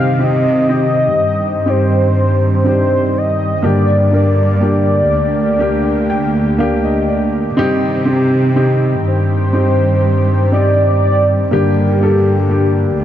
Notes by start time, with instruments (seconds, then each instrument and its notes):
Already playing: upright piano G2 C4 D#4 G4, cello section C3, analog synth pad D#3 C4 G4, soft synth lead F5
0.19 upright piano C4 D#4 G4, soft synth lead D#5
0.69 upright piano C4 D#4 G4
1.19 cello section G2
1.66 upright piano C4 D#4 G4, soft synth lead C5
2.65 upright piano C4 D4 G4, soft synth lead C5
2.71 upright piano D#4
3.18 soft synth lead D#5
3.62 upright piano G2 D3 A#3 D4 G4, cello section G2, analog synth pad D3 A#3, soft synth lead D5
4.11 upright piano A#3 D4 A#4
4.15 soft synth lead D5
4.61 upright piano A#3 D4 G4
5.12 cello section D2
5.59 upright piano A#3 D4 G4
6.10 upright piano G5
6.58 upright piano A#3 D4 G4 F5
6.84 upright piano D#5
7.08 upright piano D5
7.57 upright piano G2 C4 D#4 G4, cello section C3, analog synth pad D#3 C4
8.05 upright piano C4 D#4 G4
8.56 upright piano C4 D#4 G4
9.05 cello section G2, soft synth lead C5
9.53 upright piano C4 D#4 G4
10.52 upright piano C4 D#4 G4, soft synth lead D5
11.49 cello section G2, upright piano G2 D3 A#3 D4 G4, analog synth pad D3 A#3, soft synth lead G4
12.01 upright piano A#3 D4 A4
12.49 upright piano A#3 D4 G4
12.99 cello section D2